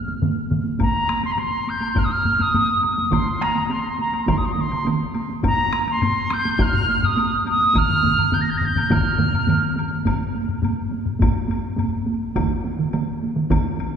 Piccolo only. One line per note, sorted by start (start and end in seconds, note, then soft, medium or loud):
0.00 0.18 F6 medium
0.81 1.21 A#5 medium
1.25 1.33 C6 medium
1.31 1.40 A#5 medium
1.38 1.70 C6 medium
1.69 1.99 G6 medium
1.98 2.05 F6 medium
2.04 2.12 D#6 medium
2.11 2.43 F6 medium
2.41 2.82 D#6 medium
2.83 3.13 D#6 medium
3.11 3.43 C6 medium
3.42 3.72 A#5 medium
3.70 3.99 C6 medium
4.00 4.30 A#5 medium
4.28 4.38 C6 medium
4.37 4.46 D#6 medium
4.45 4.53 C6 medium
4.52 4.62 D#6 medium
4.60 4.87 C6 medium
5.46 5.86 A#5 loud
5.90 6.34 C6 medium
6.33 6.63 G6 medium
6.61 7.06 F6 loud
7.04 7.47 D#6 medium
7.48 7.79 D#6 medium
7.78 8.35 F6 loud
8.33 8.42 G6 medium
8.41 8.51 A#6 medium
8.50 8.58 G6 medium
8.57 8.66 A#6 medium
8.65 8.93 G6 medium
8.92 9.78 F6 medium